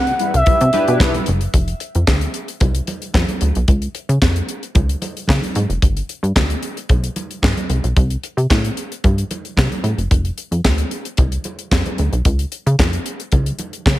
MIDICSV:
0, 0, Header, 1, 6, 480
1, 0, Start_track
1, 0, Tempo, 535714
1, 1377, Time_signature, 4, 2, 24, 8
1, 12536, End_track
2, 0, Start_track
2, 0, Title_t, "Analog synth lead"
2, 0, Program_c, 0, 81
2, 0, Note_on_c, 0, 78, 116
2, 308, Note_off_c, 0, 78, 0
2, 319, Note_on_c, 0, 76, 90
2, 996, Note_off_c, 0, 76, 0
2, 12536, End_track
3, 0, Start_track
3, 0, Title_t, "Analog polysynth"
3, 0, Program_c, 1, 90
3, 652, Note_on_c, 1, 62, 76
3, 657, Note_on_c, 1, 64, 70
3, 657, Note_on_c, 1, 67, 65
3, 660, Note_on_c, 1, 71, 81
3, 1023, Note_off_c, 1, 62, 0
3, 1026, Note_off_c, 1, 64, 0
3, 1026, Note_off_c, 1, 67, 0
3, 1027, Note_off_c, 1, 71, 0
3, 12536, End_track
4, 0, Start_track
4, 0, Title_t, "Analog polysynth"
4, 0, Program_c, 2, 90
4, 170, Note_on_c, 2, 55, 90
4, 172, Note_on_c, 2, 64, 83
4, 173, Note_on_c, 2, 71, 95
4, 281, Note_off_c, 2, 55, 0
4, 283, Note_off_c, 2, 64, 0
4, 283, Note_off_c, 2, 71, 0
4, 414, Note_on_c, 2, 55, 84
4, 414, Note_on_c, 2, 71, 91
4, 415, Note_on_c, 2, 64, 86
4, 523, Note_off_c, 2, 55, 0
4, 524, Note_off_c, 2, 64, 0
4, 524, Note_off_c, 2, 71, 0
4, 652, Note_on_c, 2, 55, 95
4, 654, Note_on_c, 2, 71, 94
4, 655, Note_on_c, 2, 64, 92
4, 763, Note_off_c, 2, 55, 0
4, 764, Note_off_c, 2, 64, 0
4, 764, Note_off_c, 2, 71, 0
4, 782, Note_on_c, 2, 55, 88
4, 782, Note_on_c, 2, 71, 106
4, 783, Note_on_c, 2, 64, 90
4, 1119, Note_off_c, 2, 55, 0
4, 1119, Note_off_c, 2, 64, 0
4, 1119, Note_off_c, 2, 71, 0
4, 12536, End_track
5, 0, Start_track
5, 0, Title_t, "Analog synth bass"
5, 0, Program_c, 3, 38
5, 0, Note_on_c, 3, 48, 104
5, 117, Note_off_c, 3, 48, 0
5, 305, Note_on_c, 3, 36, 97
5, 389, Note_off_c, 3, 36, 0
5, 420, Note_on_c, 3, 48, 51
5, 470, Note_off_c, 3, 48, 0
5, 548, Note_on_c, 3, 48, 105
5, 631, Note_off_c, 3, 48, 0
5, 789, Note_on_c, 3, 47, 95
5, 898, Note_on_c, 3, 35, 104
5, 911, Note_off_c, 3, 47, 0
5, 1077, Note_off_c, 3, 35, 0
5, 1147, Note_on_c, 3, 30, 97
5, 1323, Note_off_c, 3, 30, 0
5, 1379, Note_on_c, 3, 29, 109
5, 1558, Note_off_c, 3, 29, 0
5, 1750, Note_on_c, 3, 41, 89
5, 1832, Note_off_c, 3, 41, 0
5, 1858, Note_on_c, 3, 38, 86
5, 2037, Note_off_c, 3, 38, 0
5, 2339, Note_on_c, 3, 36, 96
5, 2518, Note_off_c, 3, 36, 0
5, 2815, Note_on_c, 3, 41, 101
5, 2911, Note_off_c, 3, 41, 0
5, 3061, Note_on_c, 3, 38, 92
5, 3155, Note_off_c, 3, 38, 0
5, 3190, Note_on_c, 3, 35, 91
5, 3273, Note_off_c, 3, 35, 0
5, 3297, Note_on_c, 3, 37, 102
5, 3477, Note_off_c, 3, 37, 0
5, 3665, Note_on_c, 3, 49, 97
5, 3749, Note_off_c, 3, 49, 0
5, 3779, Note_on_c, 3, 41, 86
5, 3958, Note_off_c, 3, 41, 0
5, 4263, Note_on_c, 3, 37, 90
5, 4441, Note_off_c, 3, 37, 0
5, 4738, Note_on_c, 3, 49, 102
5, 4833, Note_off_c, 3, 49, 0
5, 4980, Note_on_c, 3, 44, 94
5, 5075, Note_off_c, 3, 44, 0
5, 5103, Note_on_c, 3, 29, 84
5, 5188, Note_off_c, 3, 29, 0
5, 5220, Note_on_c, 3, 31, 109
5, 5399, Note_off_c, 3, 31, 0
5, 5581, Note_on_c, 3, 43, 96
5, 5667, Note_off_c, 3, 43, 0
5, 5699, Note_on_c, 3, 38, 97
5, 5878, Note_off_c, 3, 38, 0
5, 6180, Note_on_c, 3, 35, 90
5, 6359, Note_off_c, 3, 35, 0
5, 6657, Note_on_c, 3, 43, 90
5, 6752, Note_off_c, 3, 43, 0
5, 6895, Note_on_c, 3, 36, 90
5, 6991, Note_off_c, 3, 36, 0
5, 7024, Note_on_c, 3, 35, 82
5, 7109, Note_off_c, 3, 35, 0
5, 7137, Note_on_c, 3, 36, 107
5, 7317, Note_off_c, 3, 36, 0
5, 7501, Note_on_c, 3, 48, 93
5, 7587, Note_off_c, 3, 48, 0
5, 7620, Note_on_c, 3, 45, 93
5, 7799, Note_off_c, 3, 45, 0
5, 8101, Note_on_c, 3, 43, 93
5, 8280, Note_off_c, 3, 43, 0
5, 8580, Note_on_c, 3, 48, 96
5, 8674, Note_off_c, 3, 48, 0
5, 8814, Note_on_c, 3, 45, 81
5, 8910, Note_off_c, 3, 45, 0
5, 8941, Note_on_c, 3, 30, 81
5, 9027, Note_off_c, 3, 30, 0
5, 9059, Note_on_c, 3, 29, 113
5, 9238, Note_off_c, 3, 29, 0
5, 9420, Note_on_c, 3, 41, 92
5, 9506, Note_off_c, 3, 41, 0
5, 9538, Note_on_c, 3, 38, 94
5, 9718, Note_off_c, 3, 38, 0
5, 10019, Note_on_c, 3, 36, 100
5, 10198, Note_off_c, 3, 36, 0
5, 10498, Note_on_c, 3, 41, 95
5, 10593, Note_off_c, 3, 41, 0
5, 10741, Note_on_c, 3, 38, 84
5, 10835, Note_off_c, 3, 38, 0
5, 10864, Note_on_c, 3, 35, 92
5, 10949, Note_off_c, 3, 35, 0
5, 10980, Note_on_c, 3, 37, 102
5, 11159, Note_off_c, 3, 37, 0
5, 11348, Note_on_c, 3, 49, 100
5, 11431, Note_off_c, 3, 49, 0
5, 11458, Note_on_c, 3, 41, 91
5, 11638, Note_off_c, 3, 41, 0
5, 11938, Note_on_c, 3, 37, 89
5, 12118, Note_off_c, 3, 37, 0
5, 12417, Note_on_c, 3, 49, 100
5, 12513, Note_off_c, 3, 49, 0
5, 12536, End_track
6, 0, Start_track
6, 0, Title_t, "Drums"
6, 62, Note_on_c, 9, 42, 59
6, 152, Note_off_c, 9, 42, 0
6, 174, Note_on_c, 9, 42, 71
6, 264, Note_off_c, 9, 42, 0
6, 306, Note_on_c, 9, 42, 58
6, 396, Note_off_c, 9, 42, 0
6, 413, Note_on_c, 9, 42, 89
6, 416, Note_on_c, 9, 62, 61
6, 419, Note_on_c, 9, 36, 113
6, 502, Note_off_c, 9, 42, 0
6, 505, Note_off_c, 9, 62, 0
6, 508, Note_off_c, 9, 36, 0
6, 543, Note_on_c, 9, 42, 58
6, 633, Note_off_c, 9, 42, 0
6, 652, Note_on_c, 9, 42, 76
6, 659, Note_on_c, 9, 62, 55
6, 742, Note_off_c, 9, 42, 0
6, 749, Note_off_c, 9, 62, 0
6, 785, Note_on_c, 9, 42, 48
6, 875, Note_off_c, 9, 42, 0
6, 894, Note_on_c, 9, 63, 80
6, 897, Note_on_c, 9, 36, 111
6, 905, Note_on_c, 9, 38, 117
6, 914, Note_on_c, 9, 39, 102
6, 984, Note_off_c, 9, 63, 0
6, 986, Note_off_c, 9, 36, 0
6, 994, Note_off_c, 9, 38, 0
6, 1004, Note_off_c, 9, 39, 0
6, 1025, Note_on_c, 9, 42, 50
6, 1025, Note_on_c, 9, 63, 74
6, 1115, Note_off_c, 9, 42, 0
6, 1115, Note_off_c, 9, 63, 0
6, 1130, Note_on_c, 9, 42, 79
6, 1220, Note_off_c, 9, 42, 0
6, 1261, Note_on_c, 9, 42, 52
6, 1351, Note_off_c, 9, 42, 0
6, 1377, Note_on_c, 9, 36, 104
6, 1377, Note_on_c, 9, 42, 91
6, 1377, Note_on_c, 9, 62, 26
6, 1466, Note_off_c, 9, 36, 0
6, 1466, Note_off_c, 9, 42, 0
6, 1466, Note_off_c, 9, 62, 0
6, 1502, Note_on_c, 9, 42, 55
6, 1592, Note_off_c, 9, 42, 0
6, 1615, Note_on_c, 9, 42, 76
6, 1705, Note_off_c, 9, 42, 0
6, 1745, Note_on_c, 9, 42, 47
6, 1834, Note_off_c, 9, 42, 0
6, 1857, Note_on_c, 9, 36, 110
6, 1857, Note_on_c, 9, 38, 95
6, 1859, Note_on_c, 9, 63, 69
6, 1867, Note_on_c, 9, 39, 80
6, 1946, Note_off_c, 9, 36, 0
6, 1947, Note_off_c, 9, 38, 0
6, 1949, Note_off_c, 9, 63, 0
6, 1956, Note_off_c, 9, 39, 0
6, 1981, Note_on_c, 9, 42, 52
6, 2071, Note_off_c, 9, 42, 0
6, 2095, Note_on_c, 9, 42, 67
6, 2185, Note_off_c, 9, 42, 0
6, 2224, Note_on_c, 9, 42, 55
6, 2314, Note_off_c, 9, 42, 0
6, 2333, Note_on_c, 9, 42, 71
6, 2337, Note_on_c, 9, 62, 58
6, 2338, Note_on_c, 9, 36, 112
6, 2422, Note_off_c, 9, 42, 0
6, 2426, Note_off_c, 9, 62, 0
6, 2427, Note_off_c, 9, 36, 0
6, 2460, Note_on_c, 9, 42, 59
6, 2550, Note_off_c, 9, 42, 0
6, 2574, Note_on_c, 9, 42, 72
6, 2577, Note_on_c, 9, 62, 51
6, 2664, Note_off_c, 9, 42, 0
6, 2667, Note_off_c, 9, 62, 0
6, 2704, Note_on_c, 9, 42, 47
6, 2793, Note_off_c, 9, 42, 0
6, 2810, Note_on_c, 9, 63, 70
6, 2816, Note_on_c, 9, 36, 114
6, 2823, Note_on_c, 9, 38, 110
6, 2833, Note_on_c, 9, 39, 94
6, 2900, Note_off_c, 9, 63, 0
6, 2905, Note_off_c, 9, 36, 0
6, 2913, Note_off_c, 9, 38, 0
6, 2922, Note_off_c, 9, 39, 0
6, 2941, Note_on_c, 9, 63, 67
6, 2943, Note_on_c, 9, 42, 44
6, 3031, Note_off_c, 9, 63, 0
6, 3033, Note_off_c, 9, 42, 0
6, 3053, Note_on_c, 9, 42, 74
6, 3143, Note_off_c, 9, 42, 0
6, 3183, Note_on_c, 9, 42, 45
6, 3272, Note_off_c, 9, 42, 0
6, 3295, Note_on_c, 9, 62, 27
6, 3296, Note_on_c, 9, 42, 88
6, 3298, Note_on_c, 9, 36, 102
6, 3384, Note_off_c, 9, 62, 0
6, 3385, Note_off_c, 9, 42, 0
6, 3387, Note_off_c, 9, 36, 0
6, 3421, Note_on_c, 9, 42, 52
6, 3510, Note_off_c, 9, 42, 0
6, 3536, Note_on_c, 9, 42, 72
6, 3626, Note_off_c, 9, 42, 0
6, 3667, Note_on_c, 9, 42, 51
6, 3757, Note_off_c, 9, 42, 0
6, 3778, Note_on_c, 9, 36, 107
6, 3778, Note_on_c, 9, 63, 72
6, 3781, Note_on_c, 9, 38, 99
6, 3791, Note_on_c, 9, 39, 78
6, 3867, Note_off_c, 9, 63, 0
6, 3868, Note_off_c, 9, 36, 0
6, 3871, Note_off_c, 9, 38, 0
6, 3880, Note_off_c, 9, 39, 0
6, 3905, Note_on_c, 9, 42, 52
6, 3995, Note_off_c, 9, 42, 0
6, 4019, Note_on_c, 9, 42, 67
6, 4109, Note_off_c, 9, 42, 0
6, 4148, Note_on_c, 9, 42, 55
6, 4237, Note_off_c, 9, 42, 0
6, 4254, Note_on_c, 9, 62, 56
6, 4258, Note_on_c, 9, 42, 79
6, 4260, Note_on_c, 9, 36, 113
6, 4344, Note_off_c, 9, 62, 0
6, 4347, Note_off_c, 9, 42, 0
6, 4350, Note_off_c, 9, 36, 0
6, 4385, Note_on_c, 9, 42, 53
6, 4475, Note_off_c, 9, 42, 0
6, 4496, Note_on_c, 9, 62, 47
6, 4498, Note_on_c, 9, 42, 74
6, 4585, Note_off_c, 9, 62, 0
6, 4587, Note_off_c, 9, 42, 0
6, 4630, Note_on_c, 9, 42, 46
6, 4720, Note_off_c, 9, 42, 0
6, 4727, Note_on_c, 9, 63, 76
6, 4738, Note_on_c, 9, 36, 107
6, 4749, Note_on_c, 9, 38, 114
6, 4759, Note_on_c, 9, 39, 93
6, 4816, Note_off_c, 9, 63, 0
6, 4828, Note_off_c, 9, 36, 0
6, 4839, Note_off_c, 9, 38, 0
6, 4848, Note_off_c, 9, 39, 0
6, 4858, Note_on_c, 9, 63, 69
6, 4870, Note_on_c, 9, 42, 48
6, 4947, Note_off_c, 9, 63, 0
6, 4960, Note_off_c, 9, 42, 0
6, 4976, Note_on_c, 9, 42, 78
6, 5066, Note_off_c, 9, 42, 0
6, 5107, Note_on_c, 9, 42, 42
6, 5196, Note_off_c, 9, 42, 0
6, 5218, Note_on_c, 9, 36, 120
6, 5218, Note_on_c, 9, 42, 93
6, 5308, Note_off_c, 9, 36, 0
6, 5308, Note_off_c, 9, 42, 0
6, 5346, Note_on_c, 9, 42, 56
6, 5436, Note_off_c, 9, 42, 0
6, 5459, Note_on_c, 9, 42, 69
6, 5549, Note_off_c, 9, 42, 0
6, 5590, Note_on_c, 9, 42, 48
6, 5680, Note_off_c, 9, 42, 0
6, 5696, Note_on_c, 9, 63, 72
6, 5698, Note_on_c, 9, 36, 112
6, 5701, Note_on_c, 9, 38, 107
6, 5711, Note_on_c, 9, 39, 84
6, 5785, Note_off_c, 9, 63, 0
6, 5788, Note_off_c, 9, 36, 0
6, 5791, Note_off_c, 9, 38, 0
6, 5800, Note_off_c, 9, 39, 0
6, 5824, Note_on_c, 9, 42, 58
6, 5914, Note_off_c, 9, 42, 0
6, 5937, Note_on_c, 9, 42, 62
6, 6026, Note_off_c, 9, 42, 0
6, 6067, Note_on_c, 9, 42, 52
6, 6156, Note_off_c, 9, 42, 0
6, 6175, Note_on_c, 9, 42, 77
6, 6176, Note_on_c, 9, 62, 55
6, 6179, Note_on_c, 9, 36, 103
6, 6265, Note_off_c, 9, 42, 0
6, 6265, Note_off_c, 9, 62, 0
6, 6268, Note_off_c, 9, 36, 0
6, 6304, Note_on_c, 9, 42, 60
6, 6394, Note_off_c, 9, 42, 0
6, 6416, Note_on_c, 9, 42, 70
6, 6417, Note_on_c, 9, 62, 51
6, 6505, Note_off_c, 9, 42, 0
6, 6507, Note_off_c, 9, 62, 0
6, 6546, Note_on_c, 9, 42, 46
6, 6636, Note_off_c, 9, 42, 0
6, 6652, Note_on_c, 9, 63, 74
6, 6656, Note_on_c, 9, 36, 108
6, 6668, Note_on_c, 9, 38, 112
6, 6677, Note_on_c, 9, 39, 96
6, 6741, Note_off_c, 9, 63, 0
6, 6746, Note_off_c, 9, 36, 0
6, 6757, Note_off_c, 9, 38, 0
6, 6766, Note_off_c, 9, 39, 0
6, 6780, Note_on_c, 9, 63, 69
6, 6786, Note_on_c, 9, 42, 46
6, 6870, Note_off_c, 9, 63, 0
6, 6876, Note_off_c, 9, 42, 0
6, 6895, Note_on_c, 9, 42, 76
6, 6985, Note_off_c, 9, 42, 0
6, 7024, Note_on_c, 9, 42, 49
6, 7114, Note_off_c, 9, 42, 0
6, 7134, Note_on_c, 9, 62, 27
6, 7137, Note_on_c, 9, 36, 113
6, 7137, Note_on_c, 9, 42, 83
6, 7224, Note_off_c, 9, 62, 0
6, 7226, Note_off_c, 9, 42, 0
6, 7227, Note_off_c, 9, 36, 0
6, 7261, Note_on_c, 9, 42, 52
6, 7351, Note_off_c, 9, 42, 0
6, 7378, Note_on_c, 9, 42, 74
6, 7468, Note_off_c, 9, 42, 0
6, 7509, Note_on_c, 9, 42, 44
6, 7599, Note_off_c, 9, 42, 0
6, 7616, Note_on_c, 9, 63, 71
6, 7619, Note_on_c, 9, 36, 113
6, 7623, Note_on_c, 9, 38, 107
6, 7632, Note_on_c, 9, 39, 83
6, 7705, Note_off_c, 9, 63, 0
6, 7709, Note_off_c, 9, 36, 0
6, 7713, Note_off_c, 9, 38, 0
6, 7722, Note_off_c, 9, 39, 0
6, 7747, Note_on_c, 9, 42, 55
6, 7836, Note_off_c, 9, 42, 0
6, 7860, Note_on_c, 9, 42, 66
6, 7949, Note_off_c, 9, 42, 0
6, 7991, Note_on_c, 9, 42, 55
6, 8080, Note_off_c, 9, 42, 0
6, 8099, Note_on_c, 9, 62, 54
6, 8100, Note_on_c, 9, 42, 73
6, 8101, Note_on_c, 9, 36, 106
6, 8188, Note_off_c, 9, 62, 0
6, 8190, Note_off_c, 9, 42, 0
6, 8191, Note_off_c, 9, 36, 0
6, 8227, Note_on_c, 9, 42, 60
6, 8316, Note_off_c, 9, 42, 0
6, 8339, Note_on_c, 9, 42, 72
6, 8342, Note_on_c, 9, 62, 50
6, 8428, Note_off_c, 9, 42, 0
6, 8431, Note_off_c, 9, 62, 0
6, 8467, Note_on_c, 9, 42, 47
6, 8556, Note_off_c, 9, 42, 0
6, 8572, Note_on_c, 9, 63, 71
6, 8578, Note_on_c, 9, 36, 106
6, 8589, Note_on_c, 9, 38, 114
6, 8598, Note_on_c, 9, 39, 93
6, 8661, Note_off_c, 9, 63, 0
6, 8668, Note_off_c, 9, 36, 0
6, 8679, Note_off_c, 9, 38, 0
6, 8688, Note_off_c, 9, 39, 0
6, 8705, Note_on_c, 9, 63, 68
6, 8708, Note_on_c, 9, 42, 46
6, 8794, Note_off_c, 9, 63, 0
6, 8797, Note_off_c, 9, 42, 0
6, 8816, Note_on_c, 9, 42, 75
6, 8906, Note_off_c, 9, 42, 0
6, 8946, Note_on_c, 9, 42, 46
6, 9036, Note_off_c, 9, 42, 0
6, 9057, Note_on_c, 9, 62, 26
6, 9059, Note_on_c, 9, 36, 116
6, 9059, Note_on_c, 9, 42, 95
6, 9146, Note_off_c, 9, 62, 0
6, 9148, Note_off_c, 9, 36, 0
6, 9149, Note_off_c, 9, 42, 0
6, 9183, Note_on_c, 9, 42, 52
6, 9272, Note_off_c, 9, 42, 0
6, 9297, Note_on_c, 9, 42, 69
6, 9387, Note_off_c, 9, 42, 0
6, 9425, Note_on_c, 9, 42, 48
6, 9514, Note_off_c, 9, 42, 0
6, 9537, Note_on_c, 9, 63, 66
6, 9538, Note_on_c, 9, 36, 107
6, 9540, Note_on_c, 9, 38, 110
6, 9550, Note_on_c, 9, 39, 78
6, 9626, Note_off_c, 9, 63, 0
6, 9628, Note_off_c, 9, 36, 0
6, 9630, Note_off_c, 9, 38, 0
6, 9639, Note_off_c, 9, 39, 0
6, 9659, Note_on_c, 9, 42, 57
6, 9749, Note_off_c, 9, 42, 0
6, 9777, Note_on_c, 9, 42, 67
6, 9866, Note_off_c, 9, 42, 0
6, 9903, Note_on_c, 9, 42, 55
6, 9992, Note_off_c, 9, 42, 0
6, 10011, Note_on_c, 9, 42, 77
6, 10018, Note_on_c, 9, 36, 104
6, 10020, Note_on_c, 9, 62, 56
6, 10100, Note_off_c, 9, 42, 0
6, 10108, Note_off_c, 9, 36, 0
6, 10110, Note_off_c, 9, 62, 0
6, 10142, Note_on_c, 9, 42, 60
6, 10231, Note_off_c, 9, 42, 0
6, 10251, Note_on_c, 9, 42, 65
6, 10260, Note_on_c, 9, 62, 49
6, 10340, Note_off_c, 9, 42, 0
6, 10349, Note_off_c, 9, 62, 0
6, 10381, Note_on_c, 9, 42, 50
6, 10471, Note_off_c, 9, 42, 0
6, 10494, Note_on_c, 9, 63, 76
6, 10496, Note_on_c, 9, 36, 112
6, 10504, Note_on_c, 9, 38, 112
6, 10514, Note_on_c, 9, 39, 92
6, 10583, Note_off_c, 9, 63, 0
6, 10586, Note_off_c, 9, 36, 0
6, 10594, Note_off_c, 9, 38, 0
6, 10603, Note_off_c, 9, 39, 0
6, 10623, Note_on_c, 9, 42, 43
6, 10625, Note_on_c, 9, 63, 71
6, 10713, Note_off_c, 9, 42, 0
6, 10714, Note_off_c, 9, 63, 0
6, 10736, Note_on_c, 9, 42, 68
6, 10826, Note_off_c, 9, 42, 0
6, 10865, Note_on_c, 9, 42, 45
6, 10955, Note_off_c, 9, 42, 0
6, 10977, Note_on_c, 9, 42, 86
6, 10978, Note_on_c, 9, 36, 106
6, 10978, Note_on_c, 9, 62, 27
6, 11066, Note_off_c, 9, 42, 0
6, 11067, Note_off_c, 9, 36, 0
6, 11068, Note_off_c, 9, 62, 0
6, 11102, Note_on_c, 9, 42, 54
6, 11191, Note_off_c, 9, 42, 0
6, 11216, Note_on_c, 9, 42, 68
6, 11306, Note_off_c, 9, 42, 0
6, 11349, Note_on_c, 9, 42, 48
6, 11439, Note_off_c, 9, 42, 0
6, 11459, Note_on_c, 9, 36, 116
6, 11462, Note_on_c, 9, 63, 70
6, 11464, Note_on_c, 9, 38, 106
6, 11473, Note_on_c, 9, 39, 87
6, 11549, Note_off_c, 9, 36, 0
6, 11552, Note_off_c, 9, 63, 0
6, 11554, Note_off_c, 9, 38, 0
6, 11563, Note_off_c, 9, 39, 0
6, 11586, Note_on_c, 9, 42, 51
6, 11675, Note_off_c, 9, 42, 0
6, 11700, Note_on_c, 9, 42, 68
6, 11789, Note_off_c, 9, 42, 0
6, 11825, Note_on_c, 9, 42, 53
6, 11915, Note_off_c, 9, 42, 0
6, 11932, Note_on_c, 9, 42, 81
6, 11938, Note_on_c, 9, 36, 95
6, 11941, Note_on_c, 9, 62, 55
6, 12021, Note_off_c, 9, 42, 0
6, 12028, Note_off_c, 9, 36, 0
6, 12031, Note_off_c, 9, 62, 0
6, 12062, Note_on_c, 9, 42, 59
6, 12152, Note_off_c, 9, 42, 0
6, 12173, Note_on_c, 9, 42, 66
6, 12179, Note_on_c, 9, 62, 46
6, 12262, Note_off_c, 9, 42, 0
6, 12269, Note_off_c, 9, 62, 0
6, 12303, Note_on_c, 9, 42, 47
6, 12392, Note_off_c, 9, 42, 0
6, 12415, Note_on_c, 9, 63, 68
6, 12417, Note_on_c, 9, 36, 110
6, 12428, Note_on_c, 9, 38, 118
6, 12437, Note_on_c, 9, 39, 94
6, 12505, Note_off_c, 9, 63, 0
6, 12506, Note_off_c, 9, 36, 0
6, 12517, Note_off_c, 9, 38, 0
6, 12526, Note_off_c, 9, 39, 0
6, 12536, End_track
0, 0, End_of_file